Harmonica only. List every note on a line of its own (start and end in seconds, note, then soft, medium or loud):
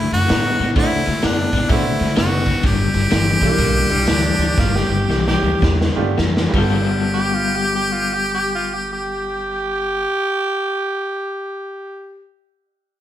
0.00 0.12 E4 medium
0.13 0.73 F#4 loud
0.78 1.27 E4 loud
1.25 1.71 D4 loud
1.70 2.17 E4 loud
2.19 2.62 F#4 medium
2.66 6.14 G4 loud
6.53 10.03 G4 loud